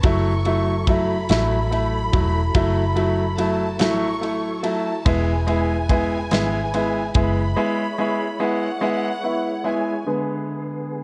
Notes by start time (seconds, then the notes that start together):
0.03 F#1 F#3 A3 E4 A4 C#6, kick, ride
0.45 F#3 A3 E4, ride
0.87 F#3 A3 E4 B5, kick, ride
1.29 A1 F#3 A3 E4, snare, ride
1.71 A3 E4, ride
2.12 E1 F#3 A3 E4, kick, ride
2.55 F#1 F#3 A3 E4, kick, ride
2.96 F#3 A3 E4, ride
3.38 F#3 A3 E4 A5, ride
3.79 A1 F#3 A3 E4 C#6, snare, ride
4.21 A3 E4, ride
4.63 F#1 F#3 A3 E4 A5, ride
5.05 E1 G#3 B3 E4 B4 G#5, kick, ride
5.47 G#3 B3 E4, ride
5.89 G#3 B3 E4, kick, ride
6.31 G#1 G#3 B3 E4, snare, ride
6.74 G#3 B3 E4, ride
7.14 F#1 G#3 B3 E4 B5, kick, ride
7.56 G#3 B3 E4 C#5
7.98 G#3 B3 E4
8.40 G#3 B3 E4 F#5
8.81 G#3 B3 E4
9.23 B3 E4
9.64 G#3 B3 E4 G#5
10.06 D3 G#3 B3 G#4